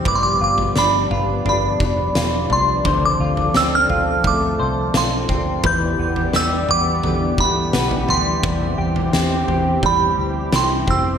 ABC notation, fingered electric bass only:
X:1
M:4/4
L:1/8
Q:1/4=86
K:Ddor
V:1 name="Fingered electric bass" clef=bass
G,,, G,,, G,,, G,,, G,,, F,,, E,,, C,, | D,, D,, D,, D,, D,, C,, B,,, D,, | E,, E,, E,, E,, E,, D,, B,,, D,, | E,, E,, E,, E,, E,, D,, C,, F,,, |]